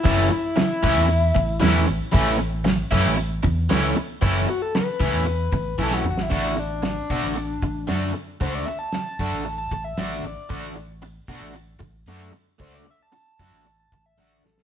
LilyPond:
<<
  \new Staff \with { instrumentName = "Analog synth lead" } { \time 4/4 \key d \lydian \tempo 4 = 115 e'8 e'2. r8 | r1 | r8 fis'16 a'16 b'2 a'16 fis'16 fis'16 e'16~ | e'8 d'2. r8 |
c''16 d''16 e''16 a''4. a''8 e''8. d''8~ | d''8 r2. r8 | c''16 d''16 e''16 a''4. a''8 e''8. a'8 | }
  \new Staff \with { instrumentName = "Overdriven electric guitar" } { \time 4/4 \key d \lydian <e a cis' e'>8 r4 <e a cis' e'>8 r4 <e a cis' e'>8 r8 | <e a cis' e'>8 r4 <e a cis' e'>8 r4 <e a cis' e'>8 r8 | <e a cis' e'>8 r4 <e a cis' e'>8 r4 <e a cis' e'>8 r8 | <d a d' fis'>8 r4 <d a d' fis'>8 r4 <d a d' fis'>8 r8 |
<d a d' fis'>8 r4 <d a d' fis'>8 r4 <d a d' fis'>8 r8 | <d a d' fis'>8 r4 <d a d' fis'>8 r4 <d a d' fis'>8 r8 | <d a d' fis'>8 r4 <d a d' fis'>8 r4 <d a d' fis'>8 r8 | }
  \new Staff \with { instrumentName = "Fingered electric bass" } { \clef bass \time 4/4 \key d \lydian fis,,8 r4 cis,16 e,8. a,,8 e,8 a,,16 r16 | a,,4. fis,16 a,,8. e,8 cis,8 r8 | fis,,8 r4 cis,16 e,8. a,,8 b,,8 a,,8 | a,,4. b,16 a,,8. a,,8 fis,8 r8 |
cis,8 r4 fis,16 a,,8. a,,8 a,,8 a,,16 r16 | a,,4. b,16 a,,8. a,,8 fis,8 r8 | cis,8 r4 fis,16 a,,8. a,,8 a,,8 a,,16 r16 | }
  \new DrumStaff \with { instrumentName = "Drums" } \drummode { \time 4/4 <hho bd>8 hho8 <hho sn>8 <hho bd>8 hho8 <hho bd>8 <hho sn>8 hho8 | <hho bd>8 hho8 <hho sn>8 <hho bd>16 sn16 hho8 <hho bd>8 <hho sn>8 hho8 | <hho bd>8 hho8 <hho sn>8 <hho bd>8 hho8 <hho bd>8 bd16 sn16 toml16 sn16 | <hho bd>8 hho8 <hho sn>8 <hho bd>16 sn16 hho8 <hho bd>8 <hho sn>8 hho8 |
<hho bd>8 hho8 <hho sn>8 <hho bd>8 hho8 <hho bd>8 <hho sn>8 hho8 | <hho bd>8 hho8 hho8 <hho bd>8 hho8 <hho bd>8 hho8 hho8 | <hho bd>8 hho8 hho8 <hho bd>8 hho8 <hho bd>8 sn8 sn16 sn16 | }
>>